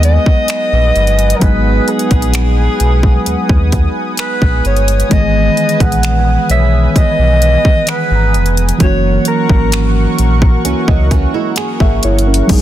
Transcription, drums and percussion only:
0.03 closed hi-hat
0.26 kick
0.48 finger snap, closed hi-hat
0.96 closed hi-hat
1.07 closed hi-hat
1.19 closed hi-hat
1.30 closed hi-hat
1.41 kick, closed hi-hat
1.88 closed hi-hat
1.99 closed hi-hat
2.11 kick, closed hi-hat
2.22 closed hi-hat
2.34 finger snap, closed hi-hat
2.80 closed hi-hat
3.03 kick
3.26 closed hi-hat
3.49 kick
3.72 kick, closed hi-hat
4.17 finger snap, closed hi-hat
4.42 kick
4.65 closed hi-hat
4.76 closed hi-hat
4.88 closed hi-hat
5.00 closed hi-hat
5.11 kick, closed hi-hat
5.57 closed hi-hat
5.69 closed hi-hat
5.80 kick, closed hi-hat
5.92 closed hi-hat
6.03 finger snap, closed hi-hat
6.50 closed hi-hat
6.96 kick, closed hi-hat
7.42 closed hi-hat
7.65 kick
7.87 finger snap, closed hi-hat
8.34 closed hi-hat
8.46 closed hi-hat
8.57 closed hi-hat
8.69 closed hi-hat
8.80 kick, closed hi-hat
9.25 closed hi-hat
9.49 kick
9.72 finger snap, closed hi-hat
10.18 closed hi-hat
10.42 kick
10.65 closed hi-hat
10.88 kick
11.11 kick, closed hi-hat
11.56 finger snap, closed hi-hat
11.80 kick
12.03 closed hi-hat, open hi-hat
12.19 closed hi-hat
12.34 closed hi-hat
12.49 kick, closed hi-hat, crash

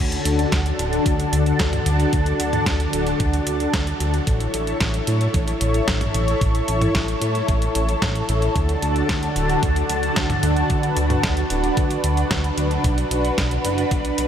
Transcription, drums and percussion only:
0.12 closed hi-hat
0.25 closed hi-hat
0.39 closed hi-hat
0.52 kick, snare, closed hi-hat
0.66 closed hi-hat
0.79 closed hi-hat
0.93 closed hi-hat
1.06 kick, closed hi-hat
1.20 closed hi-hat
1.33 closed hi-hat
1.46 closed hi-hat
1.59 kick, snare, closed hi-hat
1.73 closed hi-hat, mid tom
1.86 closed hi-hat
2.00 closed hi-hat
2.13 kick, closed hi-hat
2.26 closed hi-hat
2.40 closed hi-hat
2.53 closed hi-hat, mid tom
2.66 kick, snare, closed hi-hat
2.80 closed hi-hat
2.93 closed hi-hat
3.07 closed hi-hat
3.20 kick, closed hi-hat
3.33 closed hi-hat
3.47 closed hi-hat
3.60 closed hi-hat
3.73 kick, snare, closed hi-hat
3.87 closed hi-hat
4.00 closed hi-hat
4.14 closed hi-hat
4.27 kick, closed hi-hat
4.40 closed hi-hat
4.54 closed hi-hat
4.67 closed hi-hat
4.80 kick, snare, closed hi-hat
4.94 closed hi-hat
5.07 closed hi-hat
5.21 closed hi-hat
5.34 kick, closed hi-hat
5.48 closed hi-hat
5.61 closed hi-hat
5.74 closed hi-hat
5.88 kick, snare, closed hi-hat
6.01 closed hi-hat, mid tom
6.14 closed hi-hat
6.28 closed hi-hat
6.41 kick, closed hi-hat
6.55 closed hi-hat
6.68 closed hi-hat
6.82 closed hi-hat, mid tom
6.95 kick, snare, closed hi-hat
7.08 closed hi-hat
7.22 closed hi-hat
7.35 closed hi-hat
7.48 kick, closed hi-hat
7.62 closed hi-hat
7.75 closed hi-hat
7.89 closed hi-hat
8.02 kick, snare, closed hi-hat
8.15 closed hi-hat
8.29 closed hi-hat
8.42 closed hi-hat
8.56 kick, closed hi-hat
8.69 closed hi-hat
8.82 closed hi-hat
8.96 closed hi-hat
9.09 kick, snare, closed hi-hat
9.23 closed hi-hat
9.36 closed hi-hat
9.49 closed hi-hat
9.63 kick, closed hi-hat
9.76 closed hi-hat
9.90 closed hi-hat
10.03 closed hi-hat
10.16 kick, snare, closed hi-hat
10.30 closed hi-hat, mid tom
10.43 closed hi-hat
10.56 closed hi-hat
10.70 kick, closed hi-hat
10.83 closed hi-hat
10.97 closed hi-hat
11.10 closed hi-hat, mid tom
11.23 kick, snare, closed hi-hat
11.37 closed hi-hat
11.50 closed hi-hat
11.64 closed hi-hat
11.77 kick, closed hi-hat
11.90 closed hi-hat
12.04 closed hi-hat
12.17 closed hi-hat
12.31 kick, snare, closed hi-hat
12.44 closed hi-hat
12.58 closed hi-hat
12.71 closed hi-hat
12.84 kick, closed hi-hat
12.98 closed hi-hat
13.11 closed hi-hat
13.25 closed hi-hat
13.38 kick, snare, closed hi-hat
13.51 closed hi-hat
13.65 closed hi-hat
13.78 closed hi-hat
13.91 kick, closed hi-hat
14.05 closed hi-hat
14.18 closed hi-hat

